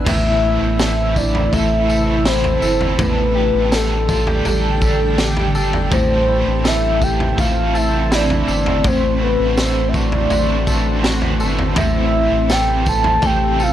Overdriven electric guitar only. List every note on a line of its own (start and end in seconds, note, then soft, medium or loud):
0.04 1.52 A2 medium
0.04 1.52 E3 medium
0.04 1.51 A3 medium
0.04 1.51 C4 medium
0.09 1.52 E4 medium
0.09 1.55 A4 medium
1.51 2.25 A3 medium
1.51 2.25 C4 medium
1.51 2.26 E4 medium
1.51 2.28 A4 medium
2.25 2.99 A3 medium
2.25 2.99 C4 medium
2.25 3.00 E4 medium
2.25 3.01 A4 medium
2.99 4.08 A2 medium
2.99 4.09 D3 medium
2.99 4.09 G3 medium
2.99 4.09 D4 medium
2.99 4.08 G4 medium
2.99 4.08 A4 medium
4.08 4.43 G3 soft
4.08 4.44 D4 soft
4.08 4.45 G4 soft
4.08 4.45 A4 soft
4.44 5.16 G3 medium
4.44 5.17 D4 medium
4.44 5.18 G4 medium
4.44 5.20 A4 medium
5.17 5.91 G3 medium
5.17 5.92 D4 medium
5.17 5.92 G4 medium
5.17 5.95 A4 medium
5.90 7.37 A2 medium
5.90 8.84 E3 medium
5.90 7.36 A3 medium
5.90 7.37 C4 medium
5.95 8.12 E4 medium
5.95 7.40 A4 medium
7.37 8.09 A3 medium
7.37 8.10 C4 medium
7.37 8.13 A4 medium
8.09 8.85 A3 medium
8.09 8.84 C4 medium
8.09 8.87 E4 medium
8.09 8.88 A4 medium
8.83 10.30 A2 medium
8.83 10.31 D3 medium
8.83 10.29 E3 medium
8.83 10.30 A3 medium
8.88 10.31 E4 medium
8.88 10.31 F#4 medium
10.29 11.02 E3 medium
10.29 11.03 A3 medium
10.29 11.04 E4 medium
10.29 11.05 F#4 medium
11.02 11.76 E3 medium
11.02 11.77 A3 medium
11.02 11.79 E4 medium
11.02 11.78 F#4 medium
11.75 13.22 A2 medium
11.75 13.23 E3 medium
11.75 13.22 A3 medium
11.75 13.22 C4 medium
11.79 13.24 E4 medium
11.79 13.25 A4 medium
13.22 13.73 A3 medium
13.22 13.73 C4 medium
13.22 13.73 A4 medium